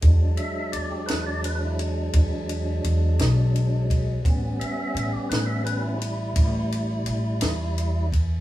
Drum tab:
RD |xxxxxxxxxxxx|xxxxxxxxxxxx|
SD |---o-----o--|---o-----o--|
BD |o-----o----o|o-----o----o|